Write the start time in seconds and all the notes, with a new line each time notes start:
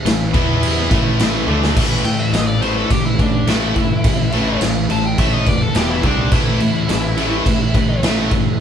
Already playing: A3 E4 B4
0.05 A1 A2 E3, snare, crash
0.33 E2 E3 B3 E4 E5, kick, crash
0.63 crash
0.90 A1 A2 E3 A3, kick, crash
1.19 snare, crash
1.47 D2 D3 A3 D4, high tom
1.63 snare
1.76 A1 A2 E3 A3 E4 B4, kick, crash
2.05 A2 E3 G5, crash
2.19 E5
2.33 A1 A2 E3 D#5, snare, crash
2.47 D5
2.61 A2 E3 A3 C5, crash
2.77 A4
2.90 A1 A2 E3 G4, kick, crash
3.06 E4
3.19 A1 A2 E3 D4, kick, crash
3.47 A1 A2 E3 A3 E4, snare, crash
3.76 G1 A2 E3, kick, crash
4.04 A1 A2 E3, kick, crash
4.32 A1 A2 E3 A3, crash
4.61 A1 A2 E3, snare, crash
4.89 A1 A2 E3 A5, crash
5.05 G5
5.18 A1 A2 E3 A3 E5, kick, crash
5.33 D#5
5.46 F1 A2 E3 D5, kick, crash
5.62 A4
5.74 E1 E2 B2 E3 G4 E5, snare, crash
5.92 E4
6.03 C2 C3 G3 C4 D4 G4 D5, kick, crash
6.32 A1 A2 E3 A3 E4 B4, kick, crash
6.60 A2 E3, crash
6.88 A1 A2 E3, snare, crash
7.17 A2 E3 A3, crash
7.46 A1 A2 E3, kick, crash
7.74 A1 A2 E3, kick, crash
8.03 A1 A2 E3 A3, snare, crash
8.31 G1 A2 E3, kick, crash